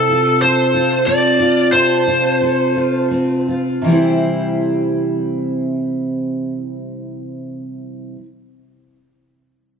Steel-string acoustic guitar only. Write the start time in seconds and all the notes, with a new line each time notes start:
Already playing: C3 C4 A4
0.09 F4
0.42 A4
0.74 F4
1.07 C4
1.40 F4
1.73 C3 A4
2.07 F4
2.42 A4
2.76 F4
3.11 C4
3.48 F4
3.82 C3 E3
3.87 G3 C4
3.91 E4 C5